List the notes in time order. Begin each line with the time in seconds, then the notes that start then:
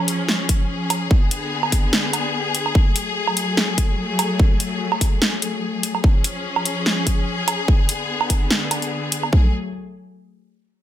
Already playing: F3 C#4 G#4
0.08 closed hi-hat
0.28 snare
0.49 kick, closed hi-hat
0.90 closed hi-hat, low woodblock
1.11 D3 B3, kick
1.31 closed hi-hat
1.63 low woodblock
1.72 kick, closed hi-hat
1.93 snare
2.13 closed hi-hat, low woodblock
2.55 closed hi-hat
2.66 low woodblock
2.75 F#3 A3, kick
2.96 closed hi-hat
3.27 low woodblock
3.37 closed hi-hat
3.57 snare
3.78 kick, closed hi-hat
4.19 closed hi-hat, low woodblock
4.39 kick
4.60 closed hi-hat
4.92 low woodblock
5.01 kick, closed hi-hat
5.22 snare
5.42 closed hi-hat
5.83 closed hi-hat
5.95 low woodblock
6.04 F3 C#4 G#4, kick
6.24 closed hi-hat
6.56 low woodblock
6.66 closed hi-hat
6.86 snare
7.07 kick, closed hi-hat
7.48 closed hi-hat, low woodblock
7.68 D3 B3, kick
7.89 closed hi-hat
8.21 low woodblock
8.30 kick, closed hi-hat
8.51 snare
8.71 closed hi-hat, low woodblock
8.82 closed hi-hat
9.12 closed hi-hat
9.23 low woodblock
9.33 F#3 A3 G#4, kick